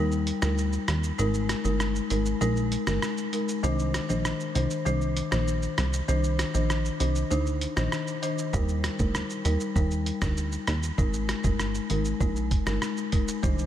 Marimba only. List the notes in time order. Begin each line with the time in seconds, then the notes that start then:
Already playing: G3 D#4 A#4
0.42 G3 D#4 A#4
1.18 G#3 D#4 A#4
1.64 G#3 D#4 A#4
2.10 G#3 D#4 A#4
2.41 G#3 D#4 A#4
2.87 G#3 D#4 A#4
3.33 G#3 D#4 A#4
3.63 D#3 D4 C5
4.09 D#3 D4 C5
4.55 D#3 D4 C5
4.86 D#3 D4 C5
5.31 D#3 D4 C5
6.08 D#3 D4 C5
6.54 D#3 D4 C5
7.00 D#3 D4 C5
7.31 D4 D#4 C5
7.77 D#3 D4 C5
8.23 D#3 D4 C5
8.53 G3 D#4 A#4
8.99 G3 D#4 A#4
9.45 G3 D#4 A#4
9.76 G3 D#4 A#4
10.22 G3 D#4 A#4
10.98 G#3 D#4 A#4
11.44 G#3 D#4 A#4
11.90 G#3 D#4 A#4
12.20 G#3 D#4 A#4
12.66 G#3 D#4 A#4
13.12 G#3 D#4 A#4
13.43 D#3 D4 C5